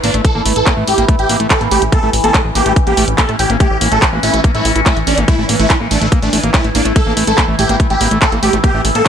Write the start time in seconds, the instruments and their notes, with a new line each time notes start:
Already playing: synth drone E3 E4
0.04 analog synth bass A1, acid bass A#3, supersaw synth D4, open hi-hat
0.14 analog synth bass A1, acid bass A3, closed hi-hat
0.25 supersaw synth A4, kick, closed hi-hat
0.35 analog synth bass A1, acid bass A#3
0.46 analog synth bass A1, acid bass A3, open hi-hat
0.56 analog synth bass A1, supersaw synth A4, closed hi-hat
0.67 acid bass A#3, kick, clap, closed hi-hat
0.77 analog synth bass A1, acid bass A3
0.87 analog synth bass A1, supersaw synth G4, open hi-hat
0.98 analog synth bass A1, acid bass A#3, closed hi-hat
1.08 acid bass A3, kick, closed hi-hat
1.19 analog synth bass A1, supersaw synth G4, closed hi-hat
1.29 analog synth bass A1, acid bass A#3, open hi-hat
1.40 analog synth bass A1, acid bass A3, closed hi-hat
1.50 supersaw synth A4, kick, clap, closed hi-hat
1.61 analog synth bass A1, acid bass A#3, closed hi-hat
1.71 analog synth bass A1, acid bass A3, supersaw synth G4, open hi-hat
1.82 analog synth bass A1, closed hi-hat
1.92 acid bass A#3, synth drone C#4, supersaw synth A4, kick, closed hi-hat
2.03 analog synth bass A1, acid bass A3
2.13 analog synth bass A1, open hi-hat
2.24 analog synth bass A1, acid bass A#3, supersaw synth A4, closed hi-hat
2.34 acid bass A3, kick, clap, closed hi-hat
2.45 analog synth bass A1
2.55 analog synth bass A1, acid bass A#3, supersaw synth G4, open hi-hat
2.66 analog synth bass A1, acid bass A3, closed hi-hat
2.76 kick, closed hi-hat
2.87 analog synth bass A1, acid bass A#3, supersaw synth G4, closed hi-hat
2.97 analog synth bass A1, acid bass A3, open hi-hat
3.08 analog synth bass A1, closed hi-hat
3.18 acid bass A#3, supersaw synth A4, kick, clap, closed hi-hat
3.29 analog synth bass A1, acid bass A3, closed hi-hat
3.39 analog synth bass A1, supersaw synth G4, open hi-hat
3.50 analog synth bass A1, acid bass A#3, closed hi-hat
3.60 acid bass A3, supersaw synth G4, kick, closed hi-hat
3.71 analog synth bass A1
3.81 analog synth bass A1, acid bass A#3, open hi-hat
3.92 analog synth bass A1, acid bass A3, supersaw synth A4, closed hi-hat
4.02 kick, clap, closed hi-hat
4.13 analog synth bass A1, acid bass A#3
4.23 analog synth bass A1, acid bass A3, supersaw synth E4, open hi-hat
4.34 analog synth bass A1, closed hi-hat
4.44 acid bass A#3, kick, closed hi-hat
4.55 analog synth bass A1, acid bass A3, supersaw synth E4, closed hi-hat
4.65 analog synth bass A1, open hi-hat
4.76 analog synth bass A1, acid bass E4, closed hi-hat
4.86 acid bass A3, supersaw synth E4, kick, clap, closed hi-hat
4.97 analog synth bass A1, closed hi-hat
5.07 analog synth bass A1, acid bass C#4, supersaw synth D4, open hi-hat
5.18 analog synth bass A1, acid bass A3, closed hi-hat
5.28 acid bass A3, synth drone E4, supersaw synth E4, kick, closed hi-hat
5.39 analog synth bass A1, acid bass A3
5.49 analog synth bass A1, acid bass A#3, open hi-hat
5.59 analog synth bass A1, acid bass A3, supersaw synth E4, closed hi-hat
5.70 acid bass A3, kick, clap, closed hi-hat
5.80 analog synth bass A1, acid bass A#3
5.91 analog synth bass A1, acid bass A3, supersaw synth D4, open hi-hat
6.01 analog synth bass A1, acid bass A3, closed hi-hat
6.12 acid bass A#3, kick, closed hi-hat
6.22 analog synth bass A1, acid bass A3, supersaw synth D4, closed hi-hat
6.33 analog synth bass A1, acid bass A3, open hi-hat
6.43 analog synth bass A1, acid bass A#3, closed hi-hat
6.54 acid bass A3, supersaw synth E4, kick, clap, closed hi-hat
6.64 analog synth bass A1, acid bass A3, closed hi-hat
6.75 analog synth bass A1, acid bass A#3, supersaw synth D4, open hi-hat
6.85 analog synth bass A1, acid bass A3, closed hi-hat
6.96 acid bass A3, supersaw synth A4, kick, closed hi-hat
7.06 analog synth bass A1, acid bass A#3
7.17 analog synth bass A1, acid bass A3, open hi-hat
7.27 analog synth bass A1, acid bass A3, supersaw synth A4, closed hi-hat
7.38 acid bass A#3, kick, clap, closed hi-hat
7.48 analog synth bass A1, acid bass A3
7.59 analog synth bass A1, acid bass A3, supersaw synth G4, open hi-hat
7.69 analog synth bass A1, acid bass A#3, closed hi-hat
7.80 acid bass A3, kick, closed hi-hat
7.90 analog synth bass A1, acid bass A3, supersaw synth G4, closed hi-hat
8.01 analog synth bass A1, acid bass A#3, open hi-hat
8.11 analog synth bass A1, acid bass A3, closed hi-hat
8.22 acid bass A3, supersaw synth A4, kick, clap, closed hi-hat
8.32 analog synth bass A1, acid bass A#3, closed hi-hat
8.43 analog synth bass A1, acid bass A3, supersaw synth G4, open hi-hat
8.53 analog synth bass A1, acid bass A3, closed hi-hat
8.64 acid bass A#3, synth drone D4, supersaw synth G4, kick, closed hi-hat
8.74 analog synth bass A1, acid bass A3
8.85 analog synth bass A1, acid bass A3, open hi-hat
8.95 analog synth bass A1, acid bass A#3, supersaw synth A4, closed hi-hat